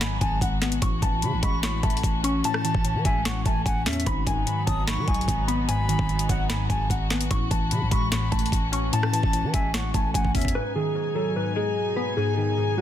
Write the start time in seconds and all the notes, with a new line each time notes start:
Already playing: G#1 D#3 F#3 B3 D#4 F#4
0.01 G#2 G#5 B5, snare, closed hi-hat
0.21 G#1 G#3 G#5 A5, kick, closed hi-hat
0.41 G#1 F#5, kick, closed hi-hat
0.62 B3, snare, closed hi-hat
0.72 closed hi-hat
0.82 A1 A2 E3 C#4 C#6, kick, closed hi-hat
1.02 A1 E3 A5, kick, closed hi-hat
1.22 A2 C#3 B5, closed hi-hat
1.33 A1
1.43 A1 G#3 B5 C#6, kick, closed hi-hat
1.63 A2 B5 C#6, snare, closed hi-hat
1.83 A1 A3 A5, kick, closed hi-hat
1.90 closed hi-hat
1.97 closed hi-hat
2.03 A1, kick, closed hi-hat
2.24 C#4 C#6, closed hi-hat
2.44 A2 A5, closed hi-hat
2.54 cross-stick
2.64 E3 A5, closed hi-hat
2.75 A1, kick
2.85 A2, closed hi-hat
2.95 E3
3.04 A1 G#3 E5 G#5, kick, closed hi-hat
3.25 A2 F#5 C#6, snare, closed hi-hat
3.45 A1 A3 G#5 A5, kick, closed hi-hat
3.66 A1 F#5 G#5, kick, closed hi-hat
3.86 E2 C#4 E5, snare, closed hi-hat, open hi-hat
3.93 closed hi-hat
4.00 closed hi-hat
4.06 G#1 G#2 F#3 B3 D#4 F#4 B5, kick, closed hi-hat
4.27 G#1 D#3 G#5, kick, closed hi-hat
4.47 G#2 B5, closed hi-hat
4.67 G#1 F#3 A5 D#6, kick, closed hi-hat
4.87 G#2 B5 C#6, snare, closed hi-hat
4.98 D#3
5.07 B1 G#3 G#5, kick, closed hi-hat
5.14 closed hi-hat
5.21 closed hi-hat
5.28 G#1, kick, closed hi-hat
5.48 B3 B5, closed hi-hat
5.68 G#2 G#5 B5, closed hi-hat
5.89 D#3 G#5, closed hi-hat
5.99 G#1, kick
6.09 G#2, closed hi-hat
6.19 closed hi-hat
6.29 G#1 F#3 F#5, kick, closed hi-hat
6.49 G#2 G#5 B5, snare, closed hi-hat
6.70 G#1 G#3 G#5 A5, kick, closed hi-hat
6.90 G#1 F#5, kick, closed hi-hat
7.10 B3, snare, closed hi-hat
7.21 closed hi-hat
7.31 A1 A2 E3 C#4 C#6, kick, closed hi-hat
7.51 A1 E3 A5, kick, closed hi-hat
7.71 A2 C#3 B5, closed hi-hat
7.81 A1
7.91 A1 G#3 B5 C#6, kick, closed hi-hat
8.11 A2 B5 C#6, snare, closed hi-hat
8.32 A1 A3 A5, kick, closed hi-hat
8.39 closed hi-hat
8.46 closed hi-hat
8.52 A1, kick, closed hi-hat
8.72 C#4 C#6, closed hi-hat
8.93 A2 A5, closed hi-hat
9.03 cross-stick
9.13 E3 A5, closed hi-hat
9.23 A1, kick
9.33 A2, closed hi-hat
9.44 E3
9.53 A1 G#3 E5 G#5, kick, closed hi-hat
9.74 A2 F#5 C#6, snare, closed hi-hat
9.94 A1 A3 G#5 A5, kick, closed hi-hat
10.14 A1 F#5 G#5, kick, closed hi-hat
10.25 kick
10.35 E2 C#4 E5, kick, closed hi-hat, open hi-hat
10.41 kick, closed hi-hat
10.48 closed hi-hat
10.55 G#2 B2 F#3 D#4 B4 G#5
10.75 D#3 G#4
10.95 G#2
11.15 F#3 A4
11.36 G#2 B4
11.56 G#3 G#4
11.96 B3 B4
12.17 G#2 G#4
12.37 D#3 G#4
12.58 G#2
12.78 F#3 F#4